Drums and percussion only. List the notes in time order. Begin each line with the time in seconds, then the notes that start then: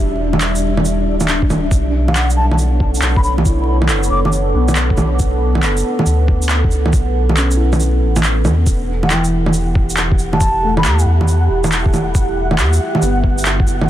0.33 low bongo
0.41 clap, shaker
0.55 shaker
0.77 low bongo
0.85 shaker
1.21 low bongo, shaker
1.28 clap, shaker
1.42 kick
1.50 low bongo, shaker
1.71 kick, shaker
2.08 low bongo
2.16 clap, shaker
2.30 shaker
2.51 low bongo
2.58 shaker
2.80 kick
2.95 shaker
3.02 clap, shaker
3.16 kick
3.24 shaker
3.38 low bongo
3.45 kick, shaker
3.82 low bongo
3.89 clap, shaker
4.03 shaker
4.25 low bongo
4.32 shaker
4.68 low bongo, shaker
4.76 clap, shaker
4.90 kick
4.97 low bongo, shaker
5.19 kick, shaker
5.55 low bongo
5.63 clap, shaker
5.77 shaker
5.99 low bongo
6.06 shaker
6.28 kick
6.42 shaker
6.49 clap, shaker
6.64 kick
6.71 shaker
6.86 low bongo
6.93 kick, shaker
7.29 low bongo
7.37 clap, shaker
7.51 shaker
7.73 low bongo, shaker
7.80 shaker
8.16 low bongo, shaker
8.23 clap, shaker
8.45 low bongo, shaker
8.67 kick, shaker
9.03 low bongo
9.10 clap, shaker
9.24 shaker
9.46 low bongo
9.53 shaker
9.75 kick
9.90 shaker
9.97 clap, shaker
10.12 kick
10.19 shaker
10.33 low bongo
10.41 kick, shaker
10.77 low bongo
10.85 clap, shaker
10.99 shaker
11.21 low bongo
11.28 shaker
11.64 low bongo, shaker
11.72 clap, shaker
11.86 kick
11.94 low bongo, shaker
12.15 kick, shaker
12.51 low bongo
12.59 clap, shaker
12.73 shaker
12.95 low bongo
13.02 shaker
13.24 kick
13.38 shaker
13.45 clap, shaker
13.60 kick
13.67 shaker
13.81 low bongo